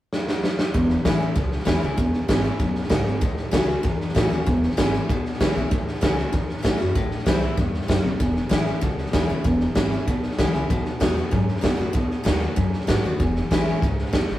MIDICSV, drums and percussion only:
0, 0, Header, 1, 2, 480
1, 0, Start_track
1, 0, Key_signature, 4, "major"
1, 0, Tempo, 311203
1, 1149, Time_signature, 4, 2, 24, 8
1, 22192, End_track
2, 0, Start_track
2, 0, Title_t, "Drums"
2, 195, Note_on_c, 9, 38, 69
2, 349, Note_off_c, 9, 38, 0
2, 440, Note_on_c, 9, 38, 75
2, 594, Note_off_c, 9, 38, 0
2, 674, Note_on_c, 9, 38, 85
2, 828, Note_off_c, 9, 38, 0
2, 908, Note_on_c, 9, 38, 97
2, 1062, Note_off_c, 9, 38, 0
2, 1142, Note_on_c, 9, 38, 37
2, 1150, Note_on_c, 9, 36, 113
2, 1296, Note_off_c, 9, 38, 0
2, 1305, Note_off_c, 9, 36, 0
2, 1379, Note_on_c, 9, 38, 34
2, 1533, Note_off_c, 9, 38, 0
2, 1622, Note_on_c, 9, 38, 116
2, 1622, Note_on_c, 9, 44, 88
2, 1625, Note_on_c, 9, 36, 90
2, 1776, Note_off_c, 9, 38, 0
2, 1776, Note_off_c, 9, 44, 0
2, 1779, Note_off_c, 9, 36, 0
2, 1860, Note_on_c, 9, 38, 31
2, 2014, Note_off_c, 9, 38, 0
2, 2094, Note_on_c, 9, 38, 32
2, 2100, Note_on_c, 9, 36, 105
2, 2248, Note_off_c, 9, 38, 0
2, 2255, Note_off_c, 9, 36, 0
2, 2343, Note_on_c, 9, 38, 35
2, 2452, Note_off_c, 9, 38, 0
2, 2452, Note_on_c, 9, 38, 32
2, 2574, Note_off_c, 9, 38, 0
2, 2574, Note_on_c, 9, 38, 110
2, 2574, Note_on_c, 9, 44, 81
2, 2576, Note_on_c, 9, 36, 85
2, 2728, Note_off_c, 9, 38, 0
2, 2728, Note_off_c, 9, 44, 0
2, 2730, Note_off_c, 9, 36, 0
2, 2810, Note_on_c, 9, 38, 36
2, 2964, Note_off_c, 9, 38, 0
2, 3047, Note_on_c, 9, 38, 37
2, 3052, Note_on_c, 9, 36, 111
2, 3201, Note_off_c, 9, 38, 0
2, 3206, Note_off_c, 9, 36, 0
2, 3294, Note_on_c, 9, 38, 36
2, 3448, Note_off_c, 9, 38, 0
2, 3531, Note_on_c, 9, 36, 90
2, 3532, Note_on_c, 9, 38, 114
2, 3532, Note_on_c, 9, 44, 93
2, 3685, Note_off_c, 9, 36, 0
2, 3686, Note_off_c, 9, 38, 0
2, 3686, Note_off_c, 9, 44, 0
2, 3767, Note_on_c, 9, 38, 33
2, 3921, Note_off_c, 9, 38, 0
2, 4007, Note_on_c, 9, 36, 103
2, 4007, Note_on_c, 9, 38, 31
2, 4161, Note_off_c, 9, 36, 0
2, 4161, Note_off_c, 9, 38, 0
2, 4244, Note_on_c, 9, 38, 34
2, 4366, Note_off_c, 9, 38, 0
2, 4366, Note_on_c, 9, 38, 35
2, 4477, Note_off_c, 9, 38, 0
2, 4477, Note_on_c, 9, 38, 116
2, 4477, Note_on_c, 9, 44, 92
2, 4485, Note_on_c, 9, 36, 85
2, 4631, Note_off_c, 9, 38, 0
2, 4631, Note_off_c, 9, 44, 0
2, 4639, Note_off_c, 9, 36, 0
2, 4725, Note_on_c, 9, 38, 36
2, 4880, Note_off_c, 9, 38, 0
2, 4959, Note_on_c, 9, 38, 39
2, 4965, Note_on_c, 9, 36, 122
2, 5114, Note_off_c, 9, 38, 0
2, 5119, Note_off_c, 9, 36, 0
2, 5200, Note_on_c, 9, 38, 35
2, 5354, Note_off_c, 9, 38, 0
2, 5446, Note_on_c, 9, 38, 117
2, 5446, Note_on_c, 9, 44, 95
2, 5448, Note_on_c, 9, 36, 90
2, 5600, Note_off_c, 9, 38, 0
2, 5600, Note_off_c, 9, 44, 0
2, 5602, Note_off_c, 9, 36, 0
2, 5693, Note_on_c, 9, 38, 34
2, 5847, Note_off_c, 9, 38, 0
2, 5929, Note_on_c, 9, 38, 33
2, 5933, Note_on_c, 9, 36, 107
2, 6083, Note_off_c, 9, 38, 0
2, 6088, Note_off_c, 9, 36, 0
2, 6182, Note_on_c, 9, 38, 34
2, 6307, Note_off_c, 9, 38, 0
2, 6307, Note_on_c, 9, 38, 35
2, 6417, Note_on_c, 9, 36, 91
2, 6419, Note_off_c, 9, 38, 0
2, 6419, Note_on_c, 9, 38, 109
2, 6419, Note_on_c, 9, 44, 85
2, 6572, Note_off_c, 9, 36, 0
2, 6573, Note_off_c, 9, 38, 0
2, 6573, Note_off_c, 9, 44, 0
2, 6661, Note_on_c, 9, 38, 34
2, 6815, Note_off_c, 9, 38, 0
2, 6898, Note_on_c, 9, 36, 124
2, 6900, Note_on_c, 9, 38, 35
2, 7053, Note_off_c, 9, 36, 0
2, 7054, Note_off_c, 9, 38, 0
2, 7140, Note_on_c, 9, 38, 37
2, 7254, Note_off_c, 9, 38, 0
2, 7254, Note_on_c, 9, 38, 29
2, 7375, Note_off_c, 9, 38, 0
2, 7375, Note_on_c, 9, 38, 122
2, 7375, Note_on_c, 9, 44, 89
2, 7376, Note_on_c, 9, 36, 86
2, 7529, Note_off_c, 9, 38, 0
2, 7529, Note_off_c, 9, 44, 0
2, 7530, Note_off_c, 9, 36, 0
2, 7620, Note_on_c, 9, 38, 34
2, 7774, Note_off_c, 9, 38, 0
2, 7852, Note_on_c, 9, 38, 33
2, 7859, Note_on_c, 9, 36, 111
2, 8006, Note_off_c, 9, 38, 0
2, 8013, Note_off_c, 9, 36, 0
2, 8103, Note_on_c, 9, 38, 34
2, 8226, Note_off_c, 9, 38, 0
2, 8226, Note_on_c, 9, 38, 32
2, 8340, Note_off_c, 9, 38, 0
2, 8340, Note_on_c, 9, 36, 92
2, 8340, Note_on_c, 9, 38, 113
2, 8340, Note_on_c, 9, 44, 82
2, 8494, Note_off_c, 9, 36, 0
2, 8494, Note_off_c, 9, 38, 0
2, 8494, Note_off_c, 9, 44, 0
2, 8580, Note_on_c, 9, 38, 38
2, 8734, Note_off_c, 9, 38, 0
2, 8811, Note_on_c, 9, 38, 39
2, 8819, Note_on_c, 9, 36, 116
2, 8965, Note_off_c, 9, 38, 0
2, 8973, Note_off_c, 9, 36, 0
2, 9064, Note_on_c, 9, 38, 37
2, 9173, Note_off_c, 9, 38, 0
2, 9173, Note_on_c, 9, 38, 31
2, 9295, Note_on_c, 9, 36, 91
2, 9298, Note_off_c, 9, 38, 0
2, 9298, Note_on_c, 9, 38, 110
2, 9298, Note_on_c, 9, 44, 90
2, 9450, Note_off_c, 9, 36, 0
2, 9452, Note_off_c, 9, 38, 0
2, 9452, Note_off_c, 9, 44, 0
2, 9540, Note_on_c, 9, 38, 34
2, 9694, Note_off_c, 9, 38, 0
2, 9773, Note_on_c, 9, 38, 34
2, 9774, Note_on_c, 9, 36, 106
2, 9928, Note_off_c, 9, 36, 0
2, 9928, Note_off_c, 9, 38, 0
2, 10012, Note_on_c, 9, 38, 35
2, 10140, Note_off_c, 9, 38, 0
2, 10140, Note_on_c, 9, 38, 33
2, 10250, Note_on_c, 9, 36, 90
2, 10252, Note_off_c, 9, 38, 0
2, 10252, Note_on_c, 9, 38, 108
2, 10252, Note_on_c, 9, 44, 87
2, 10404, Note_off_c, 9, 36, 0
2, 10406, Note_off_c, 9, 38, 0
2, 10406, Note_off_c, 9, 44, 0
2, 10491, Note_on_c, 9, 38, 37
2, 10646, Note_off_c, 9, 38, 0
2, 10726, Note_on_c, 9, 38, 38
2, 10727, Note_on_c, 9, 36, 117
2, 10880, Note_off_c, 9, 38, 0
2, 10881, Note_off_c, 9, 36, 0
2, 10968, Note_on_c, 9, 38, 35
2, 11084, Note_off_c, 9, 38, 0
2, 11084, Note_on_c, 9, 38, 29
2, 11207, Note_off_c, 9, 38, 0
2, 11207, Note_on_c, 9, 36, 86
2, 11207, Note_on_c, 9, 38, 122
2, 11207, Note_on_c, 9, 44, 96
2, 11361, Note_off_c, 9, 36, 0
2, 11361, Note_off_c, 9, 38, 0
2, 11361, Note_off_c, 9, 44, 0
2, 11445, Note_on_c, 9, 38, 35
2, 11599, Note_off_c, 9, 38, 0
2, 11686, Note_on_c, 9, 36, 114
2, 11689, Note_on_c, 9, 38, 34
2, 11840, Note_off_c, 9, 36, 0
2, 11843, Note_off_c, 9, 38, 0
2, 11936, Note_on_c, 9, 38, 33
2, 12056, Note_off_c, 9, 38, 0
2, 12056, Note_on_c, 9, 38, 36
2, 12171, Note_on_c, 9, 36, 91
2, 12177, Note_off_c, 9, 38, 0
2, 12177, Note_on_c, 9, 38, 112
2, 12177, Note_on_c, 9, 44, 89
2, 12325, Note_off_c, 9, 36, 0
2, 12331, Note_off_c, 9, 38, 0
2, 12331, Note_off_c, 9, 44, 0
2, 12415, Note_on_c, 9, 38, 36
2, 12569, Note_off_c, 9, 38, 0
2, 12650, Note_on_c, 9, 36, 106
2, 12651, Note_on_c, 9, 38, 39
2, 12804, Note_off_c, 9, 36, 0
2, 12805, Note_off_c, 9, 38, 0
2, 12898, Note_on_c, 9, 38, 35
2, 13052, Note_off_c, 9, 38, 0
2, 13130, Note_on_c, 9, 38, 113
2, 13130, Note_on_c, 9, 44, 91
2, 13131, Note_on_c, 9, 36, 88
2, 13285, Note_off_c, 9, 36, 0
2, 13285, Note_off_c, 9, 38, 0
2, 13285, Note_off_c, 9, 44, 0
2, 13374, Note_on_c, 9, 38, 35
2, 13529, Note_off_c, 9, 38, 0
2, 13607, Note_on_c, 9, 38, 34
2, 13612, Note_on_c, 9, 36, 103
2, 13761, Note_off_c, 9, 38, 0
2, 13766, Note_off_c, 9, 36, 0
2, 13851, Note_on_c, 9, 38, 34
2, 13975, Note_off_c, 9, 38, 0
2, 13975, Note_on_c, 9, 38, 35
2, 14087, Note_off_c, 9, 38, 0
2, 14087, Note_on_c, 9, 38, 112
2, 14087, Note_on_c, 9, 44, 87
2, 14095, Note_on_c, 9, 36, 91
2, 14241, Note_off_c, 9, 38, 0
2, 14241, Note_off_c, 9, 44, 0
2, 14249, Note_off_c, 9, 36, 0
2, 14331, Note_on_c, 9, 38, 36
2, 14485, Note_off_c, 9, 38, 0
2, 14566, Note_on_c, 9, 38, 39
2, 14576, Note_on_c, 9, 36, 122
2, 14720, Note_off_c, 9, 38, 0
2, 14730, Note_off_c, 9, 36, 0
2, 14810, Note_on_c, 9, 38, 37
2, 14965, Note_off_c, 9, 38, 0
2, 15048, Note_on_c, 9, 38, 118
2, 15048, Note_on_c, 9, 44, 94
2, 15056, Note_on_c, 9, 36, 86
2, 15202, Note_off_c, 9, 38, 0
2, 15202, Note_off_c, 9, 44, 0
2, 15211, Note_off_c, 9, 36, 0
2, 15293, Note_on_c, 9, 38, 33
2, 15448, Note_off_c, 9, 38, 0
2, 15530, Note_on_c, 9, 38, 33
2, 15540, Note_on_c, 9, 36, 106
2, 15685, Note_off_c, 9, 38, 0
2, 15694, Note_off_c, 9, 36, 0
2, 15778, Note_on_c, 9, 38, 31
2, 15901, Note_off_c, 9, 38, 0
2, 15901, Note_on_c, 9, 38, 38
2, 16018, Note_off_c, 9, 38, 0
2, 16018, Note_on_c, 9, 38, 121
2, 16018, Note_on_c, 9, 44, 85
2, 16022, Note_on_c, 9, 36, 89
2, 16172, Note_off_c, 9, 38, 0
2, 16172, Note_off_c, 9, 44, 0
2, 16176, Note_off_c, 9, 36, 0
2, 16263, Note_on_c, 9, 38, 38
2, 16417, Note_off_c, 9, 38, 0
2, 16501, Note_on_c, 9, 38, 38
2, 16505, Note_on_c, 9, 36, 121
2, 16655, Note_off_c, 9, 38, 0
2, 16659, Note_off_c, 9, 36, 0
2, 16744, Note_on_c, 9, 38, 34
2, 16898, Note_off_c, 9, 38, 0
2, 16981, Note_on_c, 9, 38, 111
2, 16981, Note_on_c, 9, 44, 93
2, 16987, Note_on_c, 9, 36, 92
2, 17135, Note_off_c, 9, 38, 0
2, 17135, Note_off_c, 9, 44, 0
2, 17141, Note_off_c, 9, 36, 0
2, 17231, Note_on_c, 9, 38, 33
2, 17385, Note_off_c, 9, 38, 0
2, 17467, Note_on_c, 9, 38, 34
2, 17470, Note_on_c, 9, 36, 106
2, 17621, Note_off_c, 9, 38, 0
2, 17624, Note_off_c, 9, 36, 0
2, 17710, Note_on_c, 9, 38, 35
2, 17835, Note_off_c, 9, 38, 0
2, 17835, Note_on_c, 9, 38, 34
2, 17948, Note_off_c, 9, 38, 0
2, 17948, Note_on_c, 9, 38, 114
2, 17948, Note_on_c, 9, 44, 84
2, 17952, Note_on_c, 9, 36, 91
2, 18103, Note_off_c, 9, 38, 0
2, 18103, Note_off_c, 9, 44, 0
2, 18106, Note_off_c, 9, 36, 0
2, 18186, Note_on_c, 9, 38, 35
2, 18341, Note_off_c, 9, 38, 0
2, 18423, Note_on_c, 9, 38, 36
2, 18430, Note_on_c, 9, 36, 120
2, 18577, Note_off_c, 9, 38, 0
2, 18584, Note_off_c, 9, 36, 0
2, 18675, Note_on_c, 9, 38, 36
2, 18829, Note_off_c, 9, 38, 0
2, 18914, Note_on_c, 9, 36, 91
2, 18914, Note_on_c, 9, 38, 116
2, 18914, Note_on_c, 9, 44, 94
2, 19068, Note_off_c, 9, 38, 0
2, 19068, Note_off_c, 9, 44, 0
2, 19069, Note_off_c, 9, 36, 0
2, 19153, Note_on_c, 9, 38, 33
2, 19307, Note_off_c, 9, 38, 0
2, 19390, Note_on_c, 9, 38, 31
2, 19392, Note_on_c, 9, 36, 108
2, 19544, Note_off_c, 9, 38, 0
2, 19546, Note_off_c, 9, 36, 0
2, 19636, Note_on_c, 9, 38, 35
2, 19746, Note_off_c, 9, 38, 0
2, 19746, Note_on_c, 9, 38, 36
2, 19869, Note_off_c, 9, 38, 0
2, 19869, Note_on_c, 9, 38, 111
2, 19869, Note_on_c, 9, 44, 91
2, 19874, Note_on_c, 9, 36, 87
2, 20024, Note_off_c, 9, 38, 0
2, 20024, Note_off_c, 9, 44, 0
2, 20028, Note_off_c, 9, 36, 0
2, 20123, Note_on_c, 9, 38, 36
2, 20277, Note_off_c, 9, 38, 0
2, 20356, Note_on_c, 9, 38, 38
2, 20358, Note_on_c, 9, 36, 117
2, 20510, Note_off_c, 9, 38, 0
2, 20512, Note_off_c, 9, 36, 0
2, 20608, Note_on_c, 9, 38, 37
2, 20762, Note_off_c, 9, 38, 0
2, 20843, Note_on_c, 9, 36, 100
2, 20851, Note_on_c, 9, 38, 114
2, 20851, Note_on_c, 9, 44, 92
2, 20997, Note_off_c, 9, 36, 0
2, 21006, Note_off_c, 9, 38, 0
2, 21006, Note_off_c, 9, 44, 0
2, 21090, Note_on_c, 9, 38, 33
2, 21244, Note_off_c, 9, 38, 0
2, 21322, Note_on_c, 9, 36, 109
2, 21326, Note_on_c, 9, 38, 35
2, 21476, Note_off_c, 9, 36, 0
2, 21481, Note_off_c, 9, 38, 0
2, 21571, Note_on_c, 9, 38, 32
2, 21686, Note_off_c, 9, 38, 0
2, 21686, Note_on_c, 9, 38, 36
2, 21800, Note_on_c, 9, 36, 90
2, 21802, Note_off_c, 9, 38, 0
2, 21802, Note_on_c, 9, 38, 119
2, 21802, Note_on_c, 9, 44, 82
2, 21955, Note_off_c, 9, 36, 0
2, 21956, Note_off_c, 9, 38, 0
2, 21956, Note_off_c, 9, 44, 0
2, 22046, Note_on_c, 9, 38, 37
2, 22192, Note_off_c, 9, 38, 0
2, 22192, End_track
0, 0, End_of_file